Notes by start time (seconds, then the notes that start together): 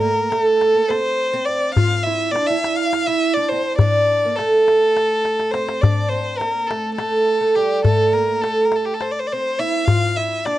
0.01 A#3 A#4
0.30 A3 A4, darbuka tek
0.61 darbuka tek
0.75 A#3
0.89 C4 C5, darbuka tek
1.33 C4
1.45 D5, darbuka ka
1.74 F4 F5, darbuka dum
2.03 E4 E5, darbuka ka
2.31 C4 D4 D5
2.36 darbuka tek
2.46 E4 E5
2.64 darbuka tek
2.75 F5
2.93 darbuka tek
3.06 E4 E5
3.33 D4 D5
3.49 C4 C5, darbuka ka
3.78 D4 D5, darbuka dum
4.09 darbuka ka
4.25 A#3
4.35 A4, darbuka tek
4.40 A3
4.68 darbuka tek
4.97 darbuka tek
5.25 darbuka tek
5.40 darbuka ka
5.51 C4 C5, darbuka tek
5.69 darbuka ka
5.81 D4 D5, darbuka dum
6.09 C4 C5
6.13 darbuka ka
6.37 A#3 A#4
6.41 darbuka tek
6.67 A4
6.71 A3, darbuka tek
6.94 A4
6.98 A3, darbuka tek
7.41 A3
7.55 G3 G4, darbuka ka
7.84 A3 A4, darbuka dum
8.13 A#3 A#4
8.41 A3 A4, darbuka tek
8.65 A#4
8.72 A4, darbuka tek
8.85 G4
8.94 A4
9.01 C5, darbuka tek
9.11 D5
9.19 C5
9.27 D5
9.32 C4 C5
9.59 E4 E5
9.85 F4 F5, darbuka dum
10.16 E4 E5, darbuka ka
10.45 D4 D5, darbuka tek